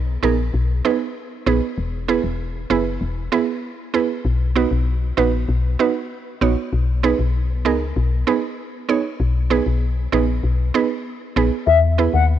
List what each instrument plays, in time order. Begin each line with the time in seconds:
Already playing: fm bass B1
0.23 fm bass A#1, synth pluck B3 D#4 G#4 A#4
0.54 fm bass B1
0.84 synth pluck B3 D#4 G#4 B4
1.46 fm bass A#1, synth pluck B3 D#4 G#4 B4
1.78 fm bass E1
2.08 synth pluck B3 E4 G#4 B4
2.24 fm bass E1
2.70 fm bass F#1, synth pluck B3 E4 G#4 B4
3.01 fm bass E1
3.32 synth pluck B3 E4 G#4 B4
3.94 synth pluck B3 E4 G#4 B4
4.25 fm bass B1
4.56 synth pluck B3 D#4 F#4 B4
4.71 fm bass B1
5.17 fm bass A#1, synth pluck B3 D#4 F#4 B4
5.49 fm bass B1
5.79 synth pluck B3 D#4 F#4 B4
6.41 fm bass A#1, synth pluck B3 D#4 F#4 C#5
6.73 fm bass B1
7.03 synth pluck B3 D#4 G#4 B4
7.19 fm bass B1
7.65 fm bass C#2, synth pluck B3 D#4 G#4 A#4
7.96 fm bass B1
8.27 synth pluck B3 D#4 G#4 B4
8.89 synth pluck B3 D#4 G#4 C#5
9.20 fm bass B1
9.50 synth pluck B3 D#4 G#4 B4
9.66 fm bass B1
10.12 fm bass A#1, synth pluck B3 D#4 G#4 B4
10.44 fm bass B1
10.74 synth pluck B3 D#4 G#4 B4
11.36 fm bass A#1, synth pluck B3 D#4 G#4 B4
11.67 fm bass E2, flute E5
11.98 synth pluck B3 E4 G#4 B4
12.14 fm bass D#2, flute F#5